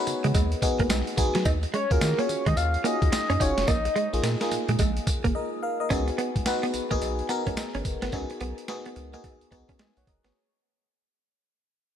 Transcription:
Already playing: B3 D#4 F#4 G#4 A#4 B4 C#5
0.07 C#3, muted clean electric guitar stroke, closed hi-hat, tambourine
0.24 C#3 G#3, closed hi-hat
0.34 D#2 G#3, kick, closed hi-hat, tambourine, cowbell
0.52 closed hi-hat
0.62 B3 D#4 F#4 G#4, muted clean electric guitar stroke, kick, closed hi-hat, tambourine
0.79 C#2 A#3, kick, closed hi-hat
0.90 B1 G#3, snare, closed hi-hat, tambourine, cowbell
1.07 closed hi-hat
1.17 A#1 B3 D#4 F#4 G#4, muted clean electric guitar stroke, kick, closed hi-hat, tambourine
1.35 F#3, snare, closed hi-hat
1.45 D#2 D#4, kick, closed hi-hat, tambourine, cowbell
1.63 muted clean electric guitar stroke, closed hi-hat
1.74 G#3 C#5, closed hi-hat
1.90 D#2 C#4 F4 F#4 G#4 A#4, kick, closed hi-hat
2.01 D#3, snare, closed hi-hat, tambourine, cowbell
2.18 A#3 C#4 F4 F#4 G#4 C#5, closed hi-hat
2.29 D#3, muted clean electric guitar stroke, closed hi-hat, tambourine
2.46 D#3 G#3 D#5, kick, closed hi-hat
2.57 D#2 F5, closed hi-hat, tambourine, cowbell
2.74 closed hi-hat
2.84 A#3 C#4 F4 F#4 G#4 D#5, closed hi-hat, tambourine
3.02 D#2, kick, closed hi-hat
3.12 muted clean electric guitar stroke, snare, closed hi-hat, tambourine, cowbell
3.30 F#2 C#4, closed hi-hat
3.40 F#1 C#4 D#4 F4 F#4 G#4 C#5, kick, closed hi-hat, tambourine
3.57 F1, snare, closed hi-hat
3.67 A#1 A#3 D#5, kick, closed hi-hat, tambourine, cowbell
3.85 muted clean electric guitar stroke, closed hi-hat
3.96 G#3, closed hi-hat
4.13 A#1 A#3 D#4 F4 G#4, closed hi-hat
4.23 A#2 A#3, snare, closed hi-hat, tambourine, cowbell
4.41 A#3 D#4 F4 G#4, snare, closed hi-hat
4.51 A#2, muted clean electric guitar stroke, closed hi-hat, tambourine
4.69 A#2 G#3, closed hi-hat
4.79 A#1 G#3, kick, closed hi-hat, tambourine, cowbell
4.97 closed hi-hat
5.07 muted clean electric guitar stroke, kick, closed hi-hat, tambourine
5.24 G#1 A#3, kick, closed hi-hat
5.35 A#4 D#5
5.63 A#4 F5
5.80 A#4 D#5
5.90 C#2 B3 C#4 D#4 F#4 G#4, kick, closed hi-hat, tambourine, cowbell
6.08 muted clean electric guitar stroke, closed hi-hat
6.18 B3, closed hi-hat
6.36 C#2, kick, closed hi-hat
6.46 B3 D#4 F#4 B4, snare, closed hi-hat, tambourine, cowbell
6.63 B3, closed hi-hat
6.74 A#1, muted clean electric guitar stroke, closed hi-hat, tambourine
6.91 A#1 A#3 B3 D#4 F#4 G#4, kick, closed hi-hat
7.01 B1, muted clean electric guitar stroke, closed hi-hat, tambourine, cowbell
7.19 closed hi-hat
7.29 B3 D#4 F#4 A#4, closed hi-hat, tambourine
7.47 C#2 C#4, kick, closed hi-hat
7.57 snare, closed hi-hat, tambourine, cowbell
7.74 G#1 C#4, closed hi-hat
7.85 F#1, muted clean electric guitar stroke, kick, closed hi-hat, tambourine
8.02 G#1 B3, snare, closed hi-hat
8.12 C#2 B3 C#4 D#4 F#4 G#4, kick, closed hi-hat, cowbell
8.30 muted clean electric guitar stroke, closed hi-hat
8.41 B1 B3, closed hi-hat
8.58 closed hi-hat
8.68 B3 D#4 F#4 G#4, snare, closed hi-hat, cowbell
8.86 B3, closed hi-hat
8.96 C#2, muted clean electric guitar stroke, closed hi-hat
9.13 A#3 B3 D#4 F#4 G#4, closed hi-hat
9.24 muted clean electric guitar stroke, kick, closed hi-hat, cowbell
9.41 C#2, closed hi-hat
9.51 C#2 B3 D#4 F#4 G#4, kick, closed hi-hat
9.69 C#4, kick, closed hi-hat
9.79 G#3 D#5 G#5, snare, closed hi-hat, cowbell
9.97 B1 C#5 F#5, closed hi-hat
10.07 F#1 A#4 D#5, muted clean electric guitar stroke, kick, closed hi-hat
10.24 G#1 B3 G#4 C#5, snare, closed hi-hat

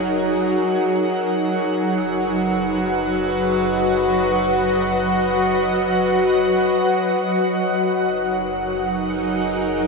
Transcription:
Already playing: F#1 F#3 D#4 F#4 G#4 A#4 F#5
1.17 F#1
1.50 F#4
1.68 B4
2.12 D#5
7.32 F#1
7.56 D#4
7.93 A#4
8.03 G#4

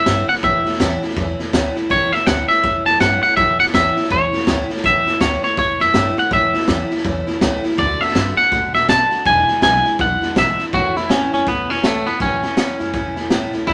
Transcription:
Already playing: E5
0.05 G2 A2 E3 A3 C#4 E4, kick, snare, hi-hat pedal
0.28 A3 C#4 E4 F#5, muted upright bass stroke, snare
0.36 snare
0.43 A1 A2 E3 A3 C#4 E4 E5, kick, snare
0.64 A3 C#4 E4, muted upright bass stroke, snare
0.73 snare
0.79 E2 A2 E3 A3 C#4 E4, kick, snare, hi-hat pedal
1.02 A3 C#4 E4, muted upright bass stroke, snare
1.10 snare
1.16 E2 E3 A3 C#4 E4, kick, snare
1.39 A3 C#4 E4, muted upright bass stroke, snare
1.53 D2 A2 E3 A3 C#4 E4, kick, snare, hi-hat pedal
1.75 A3 C#4 E4, muted upright bass stroke, snare
1.89 A1 A2 E3 A3 C#4 E4 C#5, kick, snare
2.12 A3 C#4 E4 E5, muted upright bass stroke, snare
2.26 D2 A2 E3 A3 C#4 E4 F#5, kick, snare, hi-hat pedal
2.48 A3 C#4 E4 E5, muted upright bass stroke, snare
2.63 E2 E3 A3 C#4 E4, kick, snare
2.85 F#2 A3 C#4 E4 A5, snare
3.00 G2 A2 E3 A3 C#4 E4 F#5, kick, snare, hi-hat pedal
3.23 A3 C#4 E4 F#5, muted upright bass stroke, snare
3.37 A1 A2 E3 A3 C#4 E4 E5, kick, snare
3.59 A3 C#4 E4 F#5, muted upright bass stroke, snare
3.66 snare
3.74 E2 A2 E3 A3 C#4 E4 E5, kick, snare, hi-hat pedal
3.96 A3 C#4 E4, muted upright bass stroke, snare
4.03 snare
4.10 E2 E3 A3 C#4 E4 C#5, kick, snare
4.32 A3 C#4 E4, muted upright bass stroke, snare
4.40 snare
4.47 D2 A2 E3 A3 C#4 E4, kick, snare, hi-hat pedal
4.69 A3 C#4 E4, muted upright bass stroke, snare
4.77 snare
4.84 A1 A2 E3 A3 C#4 E4 E5, kick, snare
5.06 A3 C#4 E4, muted upright bass stroke, snare
5.20 D2 A2 E3 A3 C#4 E4 C#5, kick, snare, hi-hat pedal
5.43 A3 C#4 E4 C#5, muted upright bass stroke, snare
5.57 E2 E3 A3 C#4 E4 C#5, kick, snare
5.79 F#2 A3 C#4 E4 E5, snare
5.94 G2 A2 E3 A3 C#4 E4, kick, snare, hi-hat pedal
6.16 A3 C#4 E4 F#5, muted upright bass stroke, snare
6.31 A1 A2 E3 A3 C#4 E4 E5, kick, snare
6.53 A3 C#4 E4, muted upright bass stroke, snare
6.60 snare
6.68 E2 A2 E3 A3 C#4 E4, kick, snare, hi-hat pedal
6.90 A3 C#4 E4, muted upright bass stroke, snare
6.97 snare
7.04 E2 E3 A3 C#4 E4, kick, snare
7.27 A3 C#4 E4, muted upright bass stroke, snare
7.41 C#2 A2 E3 A3 C#4 E4, kick, snare, hi-hat pedal
7.64 A3 C#4 E4, muted upright bass stroke, snare
7.71 snare
7.77 D2 D3 A3 D4 F#4 D5, kick, snare
8.00 A3 D4 F#4 E5, muted upright bass stroke, snare
8.08 snare
8.15 G2 D3 A3 D4 F#4, kick, snare, hi-hat pedal
8.37 A3 D4 F#4 F#5, muted upright bass stroke, snare
8.51 A2 D3 A3 D4 F#4, kick, snare
8.74 B2 A3 D4 F#4 E5, snare
8.89 B2 D3 A3 D4 F#4 A5, kick, snare, hi-hat pedal
9.11 A3 D4 F#4, muted upright bass stroke, snare
9.25 E1 E2 B2 E3 G#3 D4 E4 G#5, kick, snare
9.48 E3 G#3 D4 E4, muted upright bass stroke, snare
9.62 B1 E2 B2 E3 G#3 D4 E4 G#5, kick, snare, hi-hat pedal
9.85 E3 G#3 D4 E4, muted upright bass stroke, snare
9.98 B1 E3 G#3 D4 E4 F#5, kick, snare
10.21 E3 G#3 D4 E4, muted upright bass stroke, snare
10.35 A1 E2 B2 E3 G#3 D4 E4 E5, kick, snare, hi-hat pedal
10.58 E3 G#3 D4 E4, muted upright bass stroke, snare
10.73 A1 A2 E3 A3 C#4 E4 F#4, kick, snare
10.95 A3 C#4 E4, muted upright bass stroke, snare
11.09 E2 A2 E3 A3 C#4 E4, snare, hi-hat pedal
11.31 F#2 A3 C#4 E4, snare
11.47 C#2 E3 A3 B3 C#4 E4, kick, snare
11.69 F#1 A3 C#4 E4, snare
11.83 C#2 A2 E3 A3 C#4 E4, snare, hi-hat pedal
12.06 F#1 A3 B3 C#4 E4, snare
12.20 A1 A2 E3 A3 C#4 E4, kick, snare
12.42 A3 C#4 E4, muted upright bass stroke, snare
12.56 E2 A2 E3 A3 C#4 E4, snare, hi-hat pedal
12.79 F#2 A3 C#4 E4, snare
12.93 C#2 E3 A3 C#4 E4, kick, snare
13.16 F#1 A3 C#4 E4, snare
13.30 C#2 A2 E3 A3 C#4 E4, snare, hi-hat pedal
13.53 C#2 A3 C#4 E4, snare
13.67 D2 D3 A3 D4 E4 F#4, kick, snare

